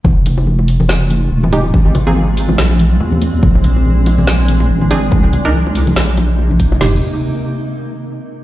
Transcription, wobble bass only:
X:1
M:4/4
L:1/8
Q:"Swing 16ths" 1/4=142
K:Fdor
V:1 name="Wobble bass" clef=bass
F,,,6 E,,,2 | A,,,4 B,,,2 E,,2 | B,,,6 A,,,2 | C,,4 B,,,4 |
F,,, z6 z |]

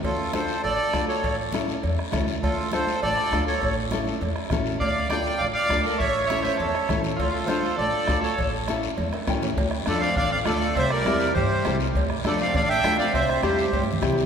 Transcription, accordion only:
X:1
M:4/4
L:1/8
Q:1/4=202
K:Dm
V:1 name="Accordion"
[FA]2 [Ac]2 [Ad]3 [A^c]- | [A^c] z6 z | [FA]2 [Ac]2 [Ad]3 [A^c]- | [A^c] z6 z |
[df]2 [dg]2 [df] [df]2 [Bd] | [^ce]2 [ce] [ce] [Ac]3 z | [FA] [FA] [Ac]2 [Ad]3 [A^c]- | [A^c] z6 z |
z2 [Ad] [df] [df] [df] [Ad]2 | [ce] [Bd]3 [Gc]3 z | z2 [Ad] [df] [df] [eg]2 [df] | [ce]2 [Gc]3 z3 |]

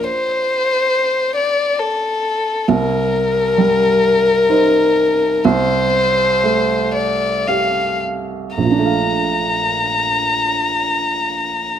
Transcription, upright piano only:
X:1
M:3/4
L:1/8
Q:1/4=62
K:Bb
V:1 name="Upright piano"
[Fd]6 | C,,2 G,2 [Ec]2 | C,,2 A,2 [Gf]2 | [B,,,B,,A,Df]6 |]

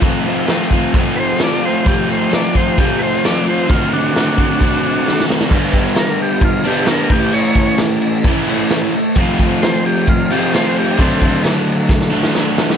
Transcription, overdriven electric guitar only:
X:1
M:4/4
L:1/8
Q:1/4=132
K:Flyd
V:1 name="Overdriven electric guitar"
[F,A,CF] [A,CF] [F,A,CF] [A,CF] [F,A,CF]2 [F,A,CF] [A,CF] | [F,A,CF] [A,CF] [F,A,CF] [A,CF] [F,A,CF]2 [F,A,CF] [A,CF] | [D,A,C^F] [A,CF] [D,A,CF] [A,CF] [D,A,CF]2 [D,A,CF] [A,CF] | [K:Amix] [G,,D,G,B,D]4- [G,,D,G,B,D] [G,,D,G,B,D] [G,,D,G,B,D] [A,,E,A,CE]- |
[A,,E,A,CE]4 [A,,E,A,CE] [A,,E,A,CE]2 z | [=F,A,=C=F]4- [F,A,CF] [F,A,CF] [F,A,CF]2 | [D,F,A,D]4- [D,F,A,D] [D,F,A,D] [D,F,A,D]2 |]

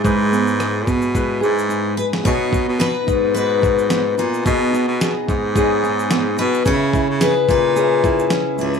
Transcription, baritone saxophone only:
X:1
M:4/4
L:1/16
Q:"Swing 16ths" 1/4=109
K:B
V:1 name="Baritone saxophone" clef=bass
G,,6 B,,4 G,,4 z2 | B,,3 B,,2 z G,,8 A,,2 | B,,3 B,,2 z G,,8 B,,2 | C,3 C,2 z A,,6 z2 C,,2 |]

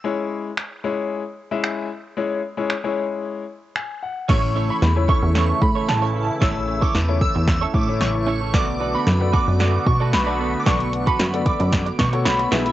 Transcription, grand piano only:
X:1
M:4/4
L:1/16
Q:1/4=113
K:Bdor
V:1 name="Grand piano"
[G,CEc]3 z3 [G,CEc]3 z2 [G,CEe]3 z2 | [G,CEc]2 z [G,CEc] z [G,CEc]4 z3 g2 f2 | [A,CEc]3 z2 [A,CEc] [A,CEc]4 z6 | [A,CEc]3 z2 [A,CEc] [A,CEA]3 z2 [A,CEc]3 z2 |
[B,FAd]3 z2 [B,FAd] [B,Ad]4 z6 | [B,FAd]3 z2 [B,FAd] [B,FAd]3 z2 [B,FAc]3 [B,EGe]2 |]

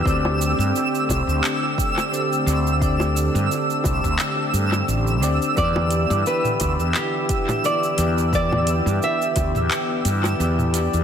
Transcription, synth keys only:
X:1
M:4/4
L:1/8
Q:"Swing 16ths" 1/4=87
K:Em
V:1 name="Synth keys"
[D,CGd]6 [D,CGd] [D,CGd] | [D,CGd]6 z [D,CGd] | [E,B,Gd]6 [E,B,Gd] [E,B,Gd] | [E,B,Gd]6 [E,B,Gd] [E,B,Gd] |]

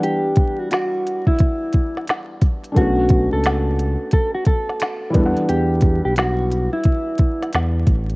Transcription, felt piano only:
X:1
M:4/4
L:1/8
Q:"Swing 16ths" 1/4=88
K:Edor
V:1 name="Felt piano"
[E,G,B,Df]6- [E,G,B,Df] z | [A,B,CDF]6- [A,B,CDF] [E,G,B,DEf]- | [E,G,B,DEf]6- [E,G,B,DEf] z |]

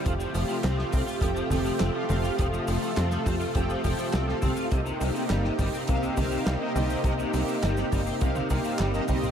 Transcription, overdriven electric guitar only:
X:1
M:4/4
L:1/16
Q:1/4=103
K:F
V:1 name="Overdriven electric guitar" clef=bass
F, F, F, F, C F, C F F, F, F, F, C F, C F | F, F, F, F, C F, C F F, F, F, F, C F, C F | C, C, C, C, G, C, G, C C, C, C, C, G, C, G, C | C, C, C, C, G, C, G, C C, C, C, C, G, C, G, C |]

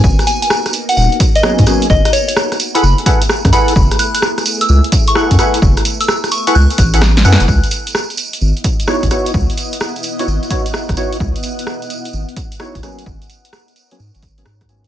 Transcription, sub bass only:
X:1
M:4/4
L:1/16
Q:"Swing 16ths" 1/4=129
K:C#m
V:1 name="Sub bass" clef=bass
G,,, z6 z D,,, z4 G,, z2 | G,,, z6 z F,,, z4 F,, z2 | F,,, z6 z C,, z4 F,, z2 | F,,, z6 z C,, z A,,,4 F,, F,,, |
C,, z6 z G,,, z4 G,,, z2 | C,, z6 z G,,, z4 G,,, z2 | C,, z6 z G,,, z4 G,,, z2 | G,,, z6 z G,, G,,,3 G,,4 |]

